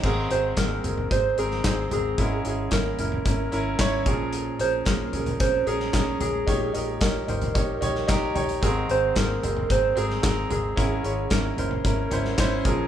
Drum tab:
CC |x---------------|----------------|----------------|----------------|
HH |--x-x-x-x-x-x-x-|x-x-x-x-x-x-x-x-|x-x-x-xxx-x-x-x-|x-x-x-xxx-x-x-xx|
CP |----x-------x---|----x-------x---|----x-------x---|----x-------x---|
SD |----o------oo---|----o-------o---|----o------oo---|----o------oo---|
FT |------oo------o-|------oo------o-|------oo------o-|------oo--o---o-|
BD |o---o---o---o---|o---o---o---o-o-|----o---o---o---|o---o---o---o---|

CC |----------------|----------------|
HH |x-x-x-x-x-x-x-x-|x-x-x-x-x-x-x-x-|
CP |----x-------x---|----x-------x---|
SD |----o------oo---|----o------oo---|
FT |------oo------o-|------oo--o---o-|
BD |o---o---o---o---|o---o---o---o-o-|